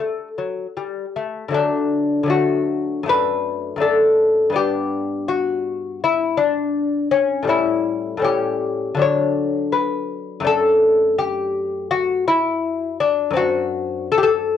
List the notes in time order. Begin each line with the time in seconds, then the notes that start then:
Already playing: D4
0.00 A3
0.38 F#3
0.77 G3
1.16 A3
1.48 D3 F#3 A3
1.54 D4
2.23 D3 F#3
2.28 A3 F#4
3.03 F#2 A3
3.08 D4 B4
3.76 F#2 A3
3.80 D4 A4
4.50 G2 B3
4.54 D4 G4
5.28 F#4
6.04 E4
6.37 D4
7.11 C#4
7.42 A2 G3
7.47 C#4 E4
8.17 A2 G3
8.22 C#4 G4
8.95 D3 F#3
8.99 D4 C#5
9.72 B4
10.40 F#2 A3
10.44 D4 A4
11.18 G4
11.91 F#4
12.28 E4
13.00 D4
13.31 F#2 C4
13.35 D4 F#4
14.12 A4
14.18 G4
14.23 A4